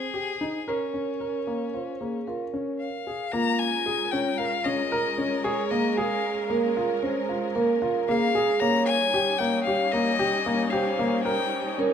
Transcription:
Already playing: violin G#4, vibraphone C5
0.14 grand piano G4
0.41 grand piano D#4
0.68 violin C#4, grand piano A#4, vibraphone A#4
0.94 grand piano C#4
1.20 grand piano A#4, vibraphone A#4
1.47 grand piano A#3
1.73 grand piano F4, vibraphone C5
2.00 grand piano A#3, vibraphone G#4
2.27 grand piano F4, vibraphone A#4
2.54 grand piano C#4
2.79 violin F5
3.07 grand piano G#4
3.32 string section G#3 C#4 A#4, grand piano A#3, vibraphone F4, violin A#5
3.59 violin G#5
3.86 grand piano G#4
4.11 grand piano C#4, violin G5
4.38 grand piano A#4, violin F5
4.64 grand piano C#4, violin D#5
4.92 grand piano A#4
5.18 grand piano C#4
5.44 grand piano G#4, vibraphone G#4, violin C#5
5.70 grand piano A#3, violin D#5
5.97 grand piano G#4, violin F5
6.50 grand piano A#3, vibraphone A#4
6.77 grand piano F4
7.03 grand piano C#4, vibraphone C5
7.29 grand piano F4
7.55 grand piano A#3, vibraphone A#4
7.82 grand piano F4
8.08 grand piano A#3, vibraphone G#4, violin F5
8.35 grand piano G#4
8.59 string section G3 C#4 D#4, grand piano A#3, vibraphone C#5, violin A#5
8.85 violin G#5
9.14 grand piano G4
9.38 grand piano A#3, violin G5
9.64 grand piano G4, violin F5
9.91 grand piano A#3, violin D#5
10.19 grand piano G4
10.46 grand piano A#3
10.70 grand piano G4, vibraphone C5, violin F5
10.99 grand piano A#3
11.23 grand piano A#4, violin G5
11.78 grand piano C#4, vibraphone A#4

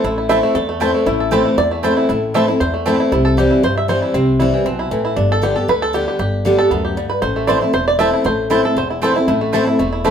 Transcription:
Already playing: five-string banjo A3 E4 A4, resonator guitar played with a steel bar A4
0.04 upright bass A1, steel-string acoustic guitar A2, five-string banjo E4
0.18 five-string banjo E4
0.29 steel-string acoustic guitar E3 A3 C4 E4, mandolin C4 E4 C5 A5, five-string banjo E5
0.43 five-string banjo A3
0.55 upright bass E2, steel-string acoustic guitar E2, five-string banjo A4
0.69 five-string banjo A3
0.80 steel-string acoustic guitar E3 A3 C4 E4, mandolin C4 E4 C5 A5, five-string banjo E4
0.95 five-string banjo A3
1.06 upright bass A1, steel-string acoustic guitar A2, five-string banjo E4, resonator guitar played with a steel bar E4
1.20 five-string banjo A4
1.31 steel-string acoustic guitar E3 A3 C4 E4, mandolin C4 E4 C5 A5, five-string banjo A4
1.45 five-string banjo E4
1.57 upright bass E2, steel-string acoustic guitar E2, five-string banjo D5
1.71 five-string banjo A3
1.83 steel-string acoustic guitar E3 A3 C4 E4, mandolin C4 E4 C5 A5, five-string banjo A4
1.97 five-string banjo E4
2.09 upright bass A1, steel-string acoustic guitar A2, five-string banjo E4
2.34 steel-string acoustic guitar E3 A3 C4 E4, mandolin C4 E4 C5 A5, five-string banjo E5
2.48 steel-string acoustic guitar C4 E4, five-string banjo E4
2.60 upright bass E2, steel-string acoustic guitar E2, five-string banjo C5
2.74 five-string banjo A3
2.86 steel-string acoustic guitar E3 A3 C4 E4, mandolin C4 E4 C5 A5, five-string banjo A4
3.00 five-string banjo E4
3.12 upright bass C2, steel-string acoustic guitar C3, five-string banjo E4
3.25 five-string banjo A4
3.37 steel-string acoustic guitar E3 G3 C4 E4, five-string banjo G4
3.51 five-string banjo E4
3.63 upright bass G2, steel-string acoustic guitar G2, five-string banjo C5
3.77 five-string banjo E5
3.88 steel-string acoustic guitar E3 G3 C4 E4, five-string banjo C5
4.02 five-string banjo E4
4.14 upright bass C2, steel-string acoustic guitar C3, five-string banjo C4
4.40 steel-string acoustic guitar E3 G3 C4 E4, five-string banjo E4
4.54 five-string banjo E3
4.65 upright bass B1, steel-string acoustic guitar B2, five-string banjo C4
4.79 five-string banjo E4
4.91 upright bass A1, steel-string acoustic guitar A2, five-string banjo E3
5.05 five-string banjo E4
5.16 upright bass G1, steel-string acoustic guitar G2, five-string banjo D4
5.32 five-string banjo A4
5.42 steel-string acoustic guitar D3 G3 B3 G4, five-string banjo G4
5.56 steel-string acoustic guitar B3 G4, five-string banjo A4
5.68 upright bass D2, steel-string acoustic guitar D3, five-string banjo B4
5.82 five-string banjo A4
5.93 steel-string acoustic guitar D3 G3 B3 G4, five-string banjo G4
6.08 five-string banjo G4
6.19 upright bass G1, steel-string acoustic guitar G2, five-string banjo G4
6.45 steel-string acoustic guitar D3 G3 B3 G4, five-string banjo D4
6.58 steel-string acoustic guitar B3 G4, five-string banjo A4
6.71 upright bass D2, steel-string acoustic guitar F#2, five-string banjo B3
6.85 five-string banjo G4
6.97 steel-string acoustic guitar G2, five-string banjo G3
7.10 five-string banjo B4
7.22 upright bass A1, steel-string acoustic guitar A2, five-string banjo C5
7.36 five-string banjo A3
7.47 steel-string acoustic guitar E3 A3 C4 E4, mandolin C4 E4 C5 A5, five-string banjo D5
7.61 steel-string acoustic guitar C4 E4, five-string banjo E4
7.73 upright bass E1, steel-string acoustic guitar E2, five-string banjo C5
7.88 five-string banjo D5
7.99 steel-string acoustic guitar E3 A3 C4 E4, mandolin C4 E4 C5 A5, five-string banjo E5
8.13 five-string banjo E4
8.24 upright bass A1, steel-string acoustic guitar A2, five-string banjo C5
8.50 steel-string acoustic guitar E3 A3 C4 E4, mandolin C4 E4 C5 A5, five-string banjo E4
8.63 steel-string acoustic guitar C4 E4, five-string banjo A4
8.76 upright bass E1, steel-string acoustic guitar E2, five-string banjo C5
8.90 five-string banjo E4
9.02 steel-string acoustic guitar E3 A3 C4 E4, mandolin C4 E4 C5 A5, five-string banjo A4
9.15 steel-string acoustic guitar C4 E4, five-string banjo E4
9.28 upright bass A1, steel-string acoustic guitar A2, five-string banjo E4
9.41 five-string banjo A3
9.53 steel-string acoustic guitar E3 A3 C4 E4, mandolin C4 E4 C5 A5, five-string banjo E4
9.67 steel-string acoustic guitar C4 E4, five-string banjo E4
9.79 upright bass E1, steel-string acoustic guitar E2, five-string banjo A3
9.93 five-string banjo E4
10.04 steel-string acoustic guitar E3 A3 C4 E4, five-string banjo A3, mandolin C4 E4 C5 A5

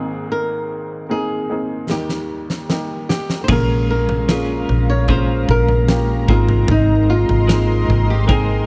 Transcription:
Already playing: upright piano G#1 G#2 A#3 C4 D#4 G#4, nylon-string guitar G#4
0.32 nylon-string guitar A#4
1.09 upright piano A#3 C4 D#4 G#4, nylon-string guitar G#4
1.49 upright piano A#3 C4 D#4 G#4
1.89 upright piano D#2 D#3 G3 A#3 D#4 G4, nylon-string guitar G4, snare
2.09 snare
2.50 snare
2.69 upright piano G3 A#3 D#4 G4, snare
3.09 nylon-string guitar G4, snare
3.30 snare
3.44 analog synth pad A#4 F5 A#5, nylon-string guitar C5
3.48 fingered electric bass A#1, clean electric guitar A#2 G#3 C#4 F4 A#4, upright piano A#2 A#3 C#4 F4 G#4, nylon-string guitar A#4, kick, floor tom, crash
3.90 nylon-string guitar A#4
4.09 floor tom
4.28 clean electric guitar G#3 C#4 F4 A#4, upright piano A#3 C#4 F4 G#4, snare
4.69 fingered electric bass A#1, floor tom
4.90 nylon-string guitar C#5
5.08 clean electric guitar A#2 G#3 C#4 F4 A#4, upright piano A#3 C#4 F4 G#4, nylon-string guitar C5, kick, floor tom
5.48 fingered electric bass A#1, nylon-string guitar A#4, kick
5.68 floor tom
5.88 upright piano A#3 C#4 F4 G4, snare
6.27 fingered electric bass G#1, upright piano G#2 A#3 C4 D#4 G#4, clean electric guitar G#3 C4 D#4 A#4, nylon-string guitar F4, analog synth pad A#4 D#5 C6, kick
6.49 floor tom
6.68 fingered electric bass G#1, nylon-string guitar D#4, floor tom
7.10 nylon-string guitar F4
7.29 fingered electric bass G#1, floor tom
7.47 clean electric guitar G#3 C4 D#4 A#4, upright piano A#3 C4 D#4 G#4, snare
7.88 fingered electric bass G#1, floor tom
8.10 nylon-string guitar G4
8.27 clean electric guitar G#3 C4 D#4 A#4, upright piano A#3 C4 D#4 G5, nylon-string guitar G#4, kick, floor tom

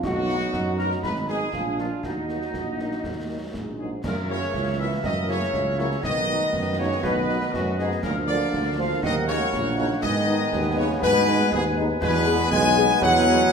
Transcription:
0.03 tuba B1, trombone section F#3 D#4, euphonium D#4, woodwind section F#4, trumpet section F#4, flute section F#5, concert bass drum, snare, crash
0.27 french horn section F#3 B3 D#4, snare
0.41 snare
0.53 tuba F#2, euphonium D#4, concert bass drum, snare
0.77 french horn section F#3 B3 D#4, woodwind section A#4, trumpet section A#4, flute section A#5, snare
0.91 snare
1.03 tuba G#1, trombone section D#3, trumpet section B4, woodwind section B4, flute section B5, concert bass drum, snare
1.15 snare
1.28 french horn section G#3 B3 D#4, trumpet section G#4, woodwind section G#4, flute section G#5, snare
1.52 tuba A#1, trombone section F3 D4, euphonium F4, concert bass drum, snare
1.78 french horn section F3 A#3 D4, trumpet section F4, woodwind section F4, flute section F5, snare
2.03 tuba D#2, trombone section F#3 D#4, trumpet section D#4, woodwind section D#4, euphonium F#4, flute section D#5, concert bass drum, snare
2.28 french horn section F#3 A#3 D#4, snare
2.41 snare
2.54 tuba A#1, trombone section A#3, concert bass drum, snare
2.78 french horn section F#3 A#3 D#4, snare
2.91 snare
3.03 tuba D#2, concert bass drum, snare
3.28 french horn section F#3 A#3 D#4, trombone section F#3
3.53 tuba A#1, trombone section G#3, concert bass drum, snare
3.77 euphonium G#2, french horn section F#3 A#3 D#4, trumpet section G#4, flute section G#4
4.02 tuba F#2, euphonium A#2, trombone section E3 A#3, flute section A#4, trumpet section A#4, woodwind section A#4 E5, concert bass drum, snare, crash
4.28 euphonium C#3, french horn section F#3 A#3 E4, flute section C#5, trumpet section C#5
4.42 snare
4.53 tuba C#2, concert bass drum, snare
4.78 euphonium E3, french horn section F#3 A#3 E4, flute section E5, trumpet section E5
5.03 tuba F#2, euphonium D#3, flute section D#5, trumpet section D#5, concert bass drum, snare
5.27 euphonium C#3, french horn section F#3 A#3 E4, flute section C#5, trumpet section C#5, snare
5.42 snare
5.53 tuba C#2, concert bass drum, snare
5.77 euphonium C#3, french horn section F#3 A#3 E4, flute section C#5, trumpet section C#5, snare
5.91 snare
6.02 tuba B1, euphonium D#3, trombone section D#3 B3, woodwind section B4 D#5, trumpet section D#5, flute section D#5, concert bass drum, snare
6.27 french horn section F#3 B3 D#4
6.41 snare
6.53 tuba F#2, concert bass drum, snare
6.78 euphonium C#3, french horn section F#3 B3 D#4, flute section C#5, trumpet section C#5
7.02 tuba B1, euphonium B2, woodwind section B4 D#5, flute section B4, trumpet section B4, concert bass drum, snare
7.28 french horn section F#3 B3 D#4, snare
7.41 snare
7.52 tuba F#2, euphonium F#2, trumpet section F#4, flute section F#4, woodwind section B4 D#5, concert bass drum, snare
7.78 euphonium G#2, french horn section F#3 B3 D#4, flute section G#4, trumpet section G#4, snare
7.91 snare
8.03 tuba D2, euphonium A#2, trombone section F3 A#3, trumpet section A#4, flute section A#4, woodwind section A#4 F5, concert bass drum, snare, crash
8.26 euphonium D3, french horn section F3 A#3 F4, trumpet section D5, flute section D5
8.41 snare
8.53 tuba D2, concert bass drum, snare
8.78 french horn section F3 A#3 F4, euphonium F3, flute section F5, trumpet section F5
9.02 tuba D#2, euphonium D#3, trombone section F#3, woodwind section A#4 F#5, trumpet section D#5, flute section D#5, concert bass drum, snare
9.27 euphonium C#3, french horn section F#3 A#3 D#4, trumpet section C#5, flute section C#5, snare
9.41 snare
9.53 tuba A#1, concert bass drum, snare
9.77 euphonium C#3, french horn section F#3 A#3 D#4, trumpet section C#5, flute section C#5, snare
9.91 snare
10.02 tuba G#2, euphonium D#3, trombone section G#3 B3, woodwind section B4 G#5, trumpet section D#5, flute section D#5, concert bass drum, snare
10.26 french horn section G#3 B3 D#4
10.40 snare
10.53 tuba D#2, concert bass drum, snare
10.75 euphonium C#3, french horn section G#3 B3 D#4, flute section C#5, trumpet section C#5
11.01 tuba G#2, euphonium B2, flute section B4, woodwind section B4 G#5, trumpet section B4, concert bass drum, snare
11.26 french horn section G#3 B3 D#4
11.51 tuba D#2, euphonium G#2, flute section G#4, trumpet section G#4, woodwind section B4 G#5, concert bass drum, snare
11.76 french horn section G#3 B3 D#4
12.01 tuba E2, euphonium B2, trombone section G#3 B3, trumpet section B4, woodwind section B4 G#5, flute section B4, concert bass drum, snare, crash
12.26 french horn section G#3 B3 G#4
12.39 snare
12.50 tuba B1, euphonium G#3, woodwind section B4 G#5, trumpet section G#5, flute section G#5, concert bass drum, snare
12.76 french horn section G#3 B3 G#4
13.01 tuba E2, euphonium F#3, flute section F#5, trumpet section F#5, concert bass drum, snare
13.26 french horn section G#3 B3 G#4, snare
13.39 snare

